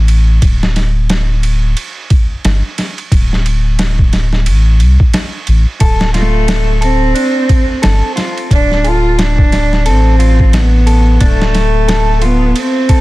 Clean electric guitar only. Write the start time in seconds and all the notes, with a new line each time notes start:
5.80 A4
6.14 F4
6.81 A4
7.15 D4
7.82 A4
8.16 F4
8.84 A4
9.18 D4
9.86 A4
10.19 F4
10.86 A4
11.21 D4
11.88 A4
12.22 F4
12.89 A4